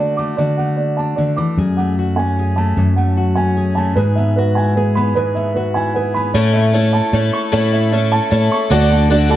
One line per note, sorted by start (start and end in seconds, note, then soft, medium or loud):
0.00 0.35 D3 medium
0.00 0.19 A3 soft
0.00 0.36 D4 soft
0.00 0.38 F#4 soft
0.00 0.36 D5 medium
0.00 0.17 F#5 medium
0.00 0.57 A5 medium
0.17 0.59 A3 soft
0.17 0.97 D6 medium
0.37 1.17 D3 medium
0.37 1.41 F#4 medium
0.37 0.75 D5 medium
0.57 1.79 A3 soft
0.57 1.37 F#5 medium
0.76 1.14 D5 medium
0.97 1.55 D4 soft
0.97 1.57 A5 medium
1.16 1.37 D3 soft
1.16 1.56 D5 medium
1.37 1.57 E3 medium
1.37 1.57 D6 medium
1.57 2.74 F#2 medium
1.57 2.76 F#2 medium
1.57 1.98 G#4 medium
1.77 2.57 A3 soft
1.77 2.56 F#5 medium
1.99 2.38 F#4 soft
2.16 3.36 C#4 soft
2.16 2.96 G#5 medium
2.39 2.80 G#4 medium
2.56 2.96 A3 medium
2.56 3.36 A5 medium
2.77 3.94 F#2 medium
2.77 3.96 F#2 medium
2.96 3.76 A3 soft
2.96 3.76 F#5 medium
3.17 3.56 F#4 soft
3.35 3.96 C#4 soft
3.35 3.96 G#5 medium
3.57 3.97 G#4 medium
3.75 3.97 A3 medium
3.75 3.95 A5 medium
3.95 5.13 G#2 medium
3.95 4.38 G#4 medium
3.95 4.34 B4 medium
4.15 4.96 B3 soft
4.15 4.95 E5 medium
4.36 4.77 F#4 soft
4.36 4.74 B4 medium
4.55 5.59 E4 soft
4.55 5.35 G#5 medium
4.75 5.14 G#4 medium
4.75 5.14 B4 medium
4.95 5.14 B3 medium
4.95 5.75 B5 medium
5.15 6.32 G#2 medium
5.15 5.56 G#4 medium
5.15 5.53 B4 medium
5.35 6.15 B3 soft
5.35 6.14 E5 medium
5.54 5.95 F#4 soft
5.54 5.93 B4 medium
5.74 6.32 E4 soft
5.74 6.34 G#5 medium
5.94 6.32 G#4 medium
5.94 6.34 B4 medium
6.14 6.33 B3 medium
6.14 6.34 B5 medium
6.34 6.74 A2 medium
6.34 7.00 A2 medium
6.34 6.73 A3 medium
6.34 6.73 C#4 medium
6.34 6.73 E4 medium
6.34 6.74 A4 medium
6.34 6.72 C#5 medium
6.53 7.33 E5 medium
6.73 7.13 A3 medium
6.73 7.13 C#4 medium
6.73 7.13 E4 medium
6.73 7.14 A4 medium
6.73 7.12 C#5 medium
6.93 7.72 A5 medium
7.13 7.30 A2 medium
7.13 7.52 A3 medium
7.13 7.51 C#4 medium
7.13 7.51 E4 medium
7.13 7.53 A4 medium
7.13 7.51 C#5 medium
7.33 8.12 C#6 medium
7.52 7.92 A2 medium
7.52 8.19 A2 medium
7.52 7.91 A3 medium
7.52 7.91 C#4 medium
7.52 7.91 E4 medium
7.52 7.93 A4 medium
7.52 7.91 C#5 medium
7.72 8.51 E5 medium
7.91 8.30 A3 medium
7.91 8.30 C#4 medium
7.91 8.30 E4 medium
7.91 8.32 A4 medium
7.91 8.30 C#5 medium
8.12 8.71 A5 medium
8.30 8.48 A2 medium
8.30 8.70 A3 medium
8.30 8.70 C#4 medium
8.30 8.71 E4 medium
8.30 8.71 A4 medium
8.30 8.71 C#5 medium
8.52 8.71 C#6 medium
8.70 9.36 D2 medium
8.70 9.09 D3 medium
8.70 9.36 D3 medium
8.70 8.98 A3 medium
8.70 8.98 D4 medium
8.70 9.09 D4 medium
8.70 8.98 F#4 medium
8.70 9.10 F#4 medium
8.70 9.11 A4 medium
8.70 9.09 D5 medium
8.70 8.98 D5 loud
8.91 9.36 F#5 medium
9.09 9.30 D3 medium
9.09 9.36 A3 medium
9.09 9.36 D4 medium
9.09 9.30 D4 medium
9.09 9.36 F#4 medium
9.09 9.30 F#4 medium
9.09 9.28 A4 medium
9.09 9.36 D5 medium
9.29 9.36 D4 soft
9.29 9.36 F#4 medium
9.29 9.36 A4 soft
9.29 9.36 A5 medium